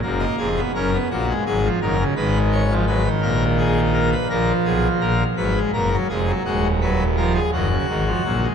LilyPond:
<<
  \new Staff \with { instrumentName = "Pipe organ" } { \time 12/8 \key ees \minor \tempo 4. = 56 r16 ees''16 aes'8 bes'8 ges'8 aes'8 bes'8 ces''8 des''8 ces''8 bes'8 aes'8 bes'16 ces''16 | bes'8 aes'8 bes'8 ces''8 bes'8 aes'8 ges'8 ces''8 bes'16 aes'16 ges'4. | }
  \new Staff \with { instrumentName = "Pipe organ" } { \clef bass \time 12/8 \key ees \minor << { bes8. ces'16 des'16 ces'16 bes16 aes16 ges16 f16 ees16 des16 ees8. f16 ges16 ees4.~ ees16 | f4. ges16 aes16 bes16 ges16 aes16 ges16 aes8 ges8 f8 ees16 des16 ees16 f16 ges16 aes16 | } \\ { <ges,, ges,>8 <f,, f,>8 <ges,, ges,>8 <bes,, bes,>8 <aes,, aes,>8 <ges,, ges,>8 <aes,, aes,>4. <bes,, bes,>4. | <bes,, bes,>8 <ces, ces>8 <bes,, bes,>8 <aes,, aes,>8 <ges,, ges,>8 <f,, f,>8 <ees,, ees,>4. <ges,, ges,>8 <aes,, aes,>8 <bes,, bes,>8 | } >> }
>>